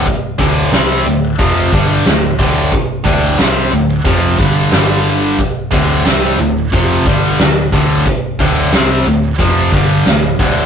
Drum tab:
HH |xxxxxxxx|xxxxxxxx|xxxxxxxx|xxxxxxxx|
SD |--o---o-|--o---o-|--o---o-|--o---o-|
BD |oo--oo-o|oo--oo--|oo--oo-o|oo--oo-o|